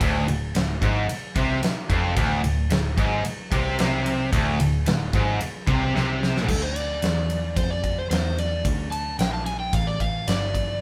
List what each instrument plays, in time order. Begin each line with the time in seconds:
0.01 picked electric bass D1, overdriven electric guitar D2, kick, ride
0.28 picked electric bass D1, overdriven electric guitar D2, ride
0.55 picked electric bass D1, overdriven electric guitar D2, snare, ride
0.82 picked electric bass G#1, overdriven electric guitar G#2, kick, ride
1.09 muted picked electric bass stroke, muted overdriven electric guitar stroke, ride
1.36 picked electric bass C2, overdriven electric guitar C3, kick, ride
1.63 muted picked electric bass stroke, muted overdriven electric guitar stroke, snare, ride
1.90 picked electric bass F1, overdriven electric guitar F2, kick, ride
2.17 picked electric bass D1, overdriven electric guitar D2, kick, ride
2.44 picked electric bass D1, overdriven electric guitar D2, ride
2.70 picked electric bass D1, overdriven electric guitar D2, snare, ride
2.98 picked electric bass G#1, overdriven electric guitar G#2, kick, ride
3.25 muted picked electric bass stroke, muted overdriven electric guitar stroke, ride
3.52 picked electric bass C2, overdriven electric guitar C3, kick, ride
3.79 picked electric bass C2, overdriven electric guitar C3, snare, ride
4.06 ride
4.32 picked electric bass D1, overdriven electric guitar D2, kick, ride
4.60 picked electric bass D1, overdriven electric guitar D2, ride
4.86 picked electric bass D1, overdriven electric guitar D2, snare, ride
5.13 picked electric bass G#1, overdriven electric guitar G#2, kick, ride
5.41 muted picked electric bass stroke, muted overdriven electric guitar stroke, ride
5.67 picked electric bass C2, overdriven electric guitar C3, kick, ride
5.95 picked electric bass C2, overdriven electric guitar C3, snare
6.23 snare
6.36 snare
6.49 picked electric bass D2, electric slide guitar A4, kick, crash
6.62 electric slide guitar C5
6.76 electric slide guitar D5, ride
7.02 picked electric bass E2, snare, ride
7.30 ride
7.56 picked electric bass F2, electric slide guitar C5, kick, ride
7.70 electric slide guitar D5
7.84 kick, ride
7.99 electric slide guitar C5
8.10 picked electric bass E2, electric slide guitar C5, snare, ride
8.38 electric slide guitar D5, ride
8.65 picked electric bass D2, kick, ride
8.91 electric slide guitar A5, ride
9.19 picked electric bass A#1, electric slide guitar G5, snare, ride
9.33 electric slide guitar A5
9.46 electric slide guitar G#5, ride
9.60 electric slide guitar G5
9.73 picked electric bass A1, electric slide guitar F5, kick, ride
9.87 electric slide guitar D5
10.00 electric slide guitar F5, kick, ride
10.28 picked electric bass G1, electric slide guitar D5, snare, ride
10.55 kick, ride